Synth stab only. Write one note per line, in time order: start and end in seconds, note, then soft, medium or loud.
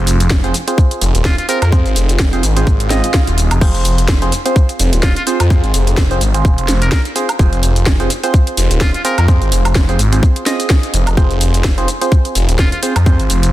0.00 0.41 C4 medium
0.00 0.41 F4 medium
0.00 0.41 G#4 medium
0.00 0.41 C5 medium
0.44 0.55 C4 medium
0.44 0.55 F4 medium
0.44 0.55 G#4 medium
0.44 0.55 C5 medium
0.68 1.46 C4 medium
0.68 1.46 F4 medium
0.68 1.46 G#4 medium
0.68 1.46 C5 medium
1.49 1.63 C4 medium
1.49 1.63 F4 medium
1.49 1.63 G#4 medium
1.49 1.63 C5 medium
1.72 2.30 C4 medium
1.72 2.30 F4 medium
1.72 2.30 G#4 medium
1.72 2.30 C5 medium
2.33 2.44 C4 medium
2.33 2.44 F4 medium
2.33 2.44 G#4 medium
2.33 2.44 C5 medium
2.57 2.88 C4 medium
2.57 2.88 F4 medium
2.57 2.88 G#4 medium
2.57 2.88 C5 medium
2.91 3.59 C4 medium
2.91 3.59 F4 medium
2.91 3.59 G#4 medium
2.91 3.59 D#5 loud
3.61 4.19 C4 medium
3.61 4.19 F4 medium
3.61 4.19 G#4 medium
3.61 4.19 C5 medium
4.22 4.33 C4 medium
4.22 4.33 F4 medium
4.22 4.33 G#4 medium
4.22 4.33 C5 medium
4.46 5.24 C4 medium
4.46 5.24 F4 medium
4.46 5.24 G#4 medium
4.46 5.24 C5 medium
5.27 5.41 C4 medium
5.27 5.41 F4 medium
5.27 5.41 G#4 medium
5.27 5.41 C5 medium
5.50 6.08 C4 medium
5.50 6.08 F4 medium
5.50 6.08 G#4 medium
5.50 6.08 C5 medium
6.11 6.22 C4 medium
6.11 6.22 F4 medium
6.11 6.22 G#4 medium
6.11 6.22 C5 medium
6.35 7.13 C4 medium
6.35 7.13 F4 medium
6.35 7.13 G#4 medium
6.35 7.13 C5 medium
7.16 7.30 C4 medium
7.16 7.30 F4 medium
7.16 7.30 G#4 medium
7.16 7.30 C5 loud
7.39 7.97 C4 medium
7.39 7.97 F4 medium
7.39 7.97 G#4 medium
7.39 7.97 C5 medium
8.00 8.11 C4 medium
8.00 8.11 F4 medium
8.00 8.11 G#4 medium
8.00 8.11 C5 medium
8.24 9.02 C4 medium
8.24 9.02 F4 medium
8.24 9.02 G#4 medium
8.24 9.02 C5 medium
9.05 9.19 C4 medium
9.05 9.19 F4 medium
9.05 9.19 G#4 medium
9.05 9.19 C5 loud
9.28 9.86 C4 medium
9.28 9.86 F4 medium
9.28 9.86 G#4 medium
9.28 9.86 C5 medium
9.89 10.00 C4 medium
9.89 10.00 F4 medium
9.89 10.00 G#4 medium
9.89 10.00 C5 medium
10.12 10.44 C4 medium
10.12 10.44 F4 medium
10.12 10.44 G#4 medium
10.12 10.44 C5 medium
10.46 11.15 C4 medium
10.46 11.15 F4 medium
10.46 11.15 G#4 medium
10.46 11.15 D#5 loud
11.17 11.75 C4 medium
11.17 11.75 F4 medium
11.17 11.75 G#4 medium
11.17 11.75 C5 medium
11.78 11.89 C4 medium
11.78 11.89 F4 medium
11.78 11.89 G#4 medium
11.78 11.89 C5 loud
12.01 12.80 C4 medium
12.01 12.80 F4 medium
12.01 12.80 G#4 medium
12.01 12.80 C5 medium
12.83 12.97 C4 medium
12.83 12.97 F4 medium
12.83 12.97 G#4 medium
12.83 12.97 C5 loud
13.06 13.52 C4 medium
13.06 13.52 F4 medium
13.06 13.52 G#4 medium
13.06 13.52 C5 medium